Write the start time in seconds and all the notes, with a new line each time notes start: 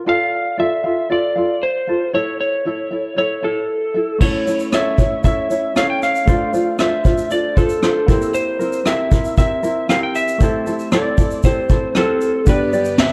0.06 F4 A4 D5 F5
0.58 F4 A4 D5 E5 F5
0.84 F4 A4 F5
1.10 F4 A4 D5 F5
1.36 F4 A4 F5
1.63 C5
1.87 F4 A4 F5
2.13 E4 A4 C#5 E5
2.40 C#5
2.65 E4 A4 C#5 E5
2.91 E4 A4 E5
3.16 E4 A4 C#5 E5
3.42 E4 A4 E5
3.94 E4 A4 E5
4.18 A3 C#4 E4 A4 C#5, kick, crash
4.46 C#4 E4 C#5, shaker
4.59 shaker
4.72 C#4 E4 A4 C#5 E5, cross-stick, shaker
4.98 C#4 E4 C#5, kick, shaker
5.24 C#4 E4 A4 C#5 E5, kick, shaker
5.50 C#4 E4 C#5, shaker
5.76 C#4 E4 A4 C#5 F5, cross-stick, shaker
5.90 G5
6.02 F5, cross-stick, shaker
6.15 shaker
6.26 A3 D4 F4 A4 C5 D5, kick, shaker
6.53 D4 F4 C5, shaker
6.79 D4 F4 A4 C5 E5, cross-stick, shaker
7.05 D4 F4 C5, kick, shaker
7.18 shaker
7.31 D4 F4 A4 C5 D5, shaker
7.57 D4 F4 A4 C5, kick, shaker
7.69 shaker
7.82 D4 F4 A4 C5, cross-stick, shaker
8.06 A#3 C4 E4 G4 A#4 C5, kick, shaker
8.22 shaker
8.34 C5, shaker
8.59 C4 E4 A#4, shaker
8.73 shaker
8.86 C4 E4 G4 A#4 E5, cross-stick, shaker
9.11 C4 E4 A#4, kick, shaker
9.25 shaker
9.37 C4 E4 G4 A#4 E5, kick, shaker
9.63 C4 E4 A#4, shaker
9.89 C4 E4 G4 A#4 F5, cross-stick, shaker
10.03 G5
10.15 E5, shaker
10.28 shaker
10.38 A3 C4 E4 G4 A4, kick, shaker
10.42 C5
10.67 C4 E4 A4, shaker
10.79 shaker
10.92 C4 E4 G4 A4 D5, cross-stick, shaker
11.18 C4 E4 A4, kick, shaker
11.30 shaker
11.43 C4 E4 G4 A4 C5, kick, shaker
11.70 C4 E4 A4, kick, shaker
11.95 C4 E4 G4 A4 C5, cross-stick, shaker
12.21 shaker
12.45 G2 D3 B3 D4 G4 B4 D5, kick, shaker
12.49 B4 D5
12.73 D4 G4 D5, shaker
12.85 shaker
12.98 E5, snare, shaker